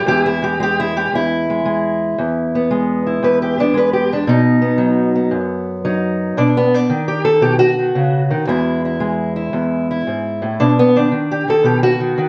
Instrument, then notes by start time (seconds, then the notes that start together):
steel-string acoustic guitar
0.06 E2 G#3 E4 G4
0.26 E4
0.42 G#3 G4
0.60 G#3 G4
0.80 E4
0.96 G#3 G4
1.12 E2 E4
1.50 G#3
1.65 G#3
2.18 E2
2.55 B3
2.71 G#3
3.07 E4
3.23 E2 B4
3.42 G4
3.58 B3 D4
3.74 G#3 B4
3.93 G4
4.12 B3 D4
4.27 B2 D#4
4.62 B3
4.78 F#3
5.15 B3
5.31 F#2
5.85 F#3 D#4
6.37 B2 D4
6.57 B3
6.74 D4
6.90 D#3
7.08 G4
7.25 A4
7.41 B2 G4
7.59 F#4
7.79 D#3
7.95 C#3
8.31 D#3
8.47 E2 G#3 E4
8.85 E4
9.00 G#3
9.36 E4
9.53 E2
9.91 E4
10.07 G#2
10.42 A2
10.60 B2 D4
10.79 B3
10.96 D#3 D4
11.11 D#3
11.31 G4
11.48 D#3 A4
11.63 B2 G4
11.83 F#4
12.00 D#3
12.18 D#3